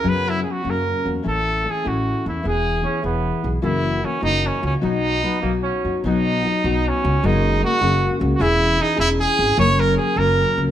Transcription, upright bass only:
\new Staff \with { instrumentName = "Upright bass" } { \clef bass \time 6/8 \key b \major \tempo 4. = 101 fis,4. fis,4 e,8 | a,,4. a,,4 e,8 | e,,4. e,,4 b,,8 | fis,,4. fis,,4 cis,8 |
b,,4. b,,4 fis,8 | b,,4. b,,4 cis,8 | fis,,4. fis,,4 cis,8 | e,,4. e,,4 gis,,8 |
fis,,4. fis,,4 cis,8 | }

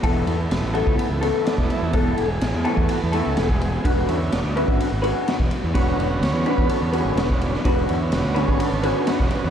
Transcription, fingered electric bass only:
\new Staff \with { instrumentName = "Fingered electric bass" } { \clef bass \time 4/4 \key e \mixolydian \tempo 4 = 126 e,,8 e,8 e,,16 a,,8 cis,16 r16 cis,8 r8 e,,16 r16 e,16 | e,,8 e,,8 a,,16 e,16 r16 e,16 r16 e,8 cis,16 e,,4 | e,,8 e,8 e,,16 d,8 gis,,16 r16 gis,,8 r8 e,,16 r16 e,16 | e,,8 e,,8 d,16 e,16 r16 e,16 r16 e,8 gis,,16 e,,4 |
e,,8 e,8 e,,16 d,8 gis,,16 r16 gis,,8 r8 e,,16 r16 e,16 | }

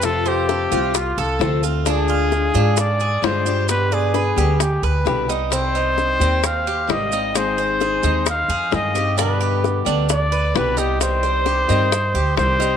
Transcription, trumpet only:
\new Staff \with { instrumentName = "Trumpet" } { \time 4/4 \key c \minor \tempo 4 = 131 a'8 g'4. f'8 a'4 r8 | aes'2 d''4 c''4 | b'8 aes'4. g'8 b'4 r8 | c''2 f''4 ees''4 |
c''2 f''4 ees''4 | b'4. r8 d''4 b'8 g'8 | c''2. c''4 | }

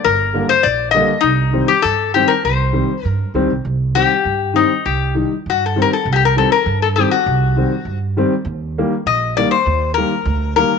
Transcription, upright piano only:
\new Staff \with { instrumentName = "Upright piano" } { \clef bass \time 2/4 \tempo 4 = 100 r8 <d g bes>16 r8. <d g bes>16 r16 | r8 <ees g c'>16 r8. <ees g c'>16 r16 | r8 <ees g c'>16 r8. <ees g c'>16 r16 | r8 <ees g c'>16 r8. <ees g c'>16 r16 |
r8 <ees g ees'>16 r8. <ees g c'>16 r16 | r8 <ees g c'>16 r8. <ees g c'>16 r16 | r8 <ees g c'>16 r8. <ees g c'>16 r16 | r8 <ees g bes>16 r8. <ees g bes>16 r16 |
r8 <ees g bes>16 r8. <ees g bes>16 r16 | }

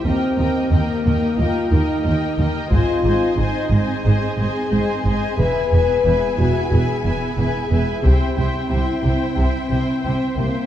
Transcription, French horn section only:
\new Staff \with { instrumentName = "French horn section" } { \time 4/4 \key aes \major \tempo 4 = 90 c'4 bes4 f'8 ees'4 r8 | f'4 ees'4 aes'2 | b'4. ges'8 gis'4. gis'8 | g'4 e'4 c'4. bes8 | }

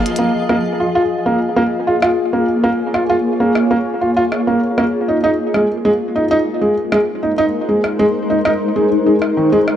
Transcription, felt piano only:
\new Staff \with { instrumentName = "Felt piano" } { \time 4/4 \key bes \minor \tempo 4 = 98 r16 bes16 r16 bes16 r16 f'16 f'16 r16 bes16 r16 bes16 r16 f'16 f'16 r16 bes16 | r16 bes16 r16 f'16 f'16 r16 bes16 r16 bes16 r16 f'16 f'16 r16 bes16 r16 bes16 | r16 ees'16 ees'16 r16 aes16 r16 aes16 r16 ees'16 ees'16 r16 aes16 r16 aes16 r16 ees'16 | ees'16 r16 aes16 r16 aes16 r16 ees'16 ees'16 r16 aes16 r16 aes16 r16 ees16 aes16 r16 | }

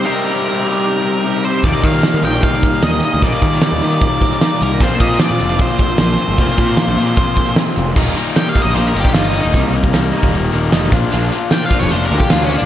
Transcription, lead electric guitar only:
\new Staff \with { instrumentName = "Lead electric guitar" } { \time 4/4 \key ees \major \tempo 4 = 152 bes'2.~ bes'8 c''8 | d''8 f''4 g''8 f''4 ees''8 ees''8 | d''2.~ d''8 bes'8 | c''8 ees''8 d''4 c''2~ |
c''2. r4 | r4 \tuplet 3/2 { g''8 f''8 ees''8 c''8 bes'8 g'8 f'8 ees'8 ees'8 } | r1 | r4 \tuplet 3/2 { g''8 f''8 des''8 c''8 bes'8 g'8 f'8 des'8 d'8 } | }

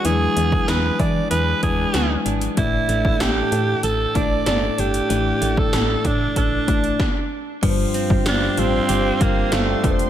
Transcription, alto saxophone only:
\new Staff \with { instrumentName = "Alto saxophone" } { \time 4/4 \key g \dorian \tempo 4 = 95 gis'4 b'8 d''8 b'8 gis'4 r8 | e'4 g'4 a'8 d''8 d''8 g'8~ | g'8. a'8. d'8 d'4. r8 | r4 d'8 c'4 bes8 a8. r16 | }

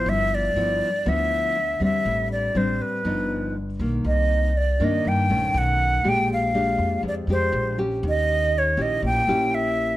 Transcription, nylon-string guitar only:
\new Staff \with { instrumentName = "Nylon-string guitar" } { \time 4/4 \key g \mixolydian \tempo 4 = 120 << { <f b e'>4 <f b e'>8 r8 <f b e'>4 r8 <g c' d'>8~ | <g c' d'>4 <g c' d'>4 <f b dis'>4 r8 <dis ais>8~ | \key c \minor <dis ais>4 r8 <ees bes d'>4 <ees a des'>4. | <aes d' g'>4 <aes d' g'>4. <aes d' g'>4 <des' g'>8~ |
<des' g'>4. <des' fes' g'>4 <des' fes' g'>4. | } \\ { g,2 d2 | a,2 g,2 | c2 g,4 r4 | bes,2 f,4 r4 |
ees2 bes,2 | } >> }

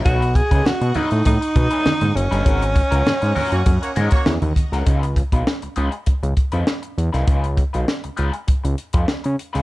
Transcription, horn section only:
\new Staff \with { instrumentName = "Horn section" } { \time 4/4 \key des \mixolydian \tempo 4 = 100 r1 | r4. r16 <bes ges' des''>16 r16 <bes ges' des''>16 r16 <bes ges' des''>8 r8. | r1 | r1 | }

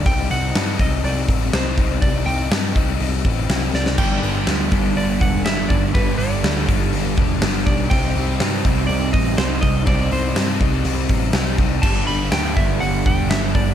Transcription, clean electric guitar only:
\new Staff \with { instrumentName = "Clean electric guitar" } { \time 4/4 \key c \lydian \tempo 4 = 122 g''8 fis''4 ees''8 d''4 c''4 | d''8 g''4 r2 d''8 | g''2 d''8 fis''8 e''8 d''8 | b'8 d''4 r2 d''8 |
g''2 d''8 ees''8 c''8 ees''8 | d''8 c''4 r2 r8 | a''8 b''8 g''8 e''8 fis''8 g''8 e''8 d''8 | }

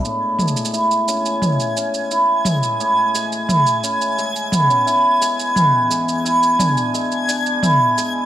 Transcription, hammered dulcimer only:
\new Staff \with { instrumentName = "Hammered dulcimer" } { \time 4/4 \key a \major \tempo 4 = 87 a,8 gis8 e'8 cis'8 gis8 cis'8 e'8 gis8 | a,8 gis8 e'8 cis'8 gis8 b16 cis'16 e'8 gis8 | e,8 gis8 e'8 d'8 gis8 d'8 e'8 gis8 | }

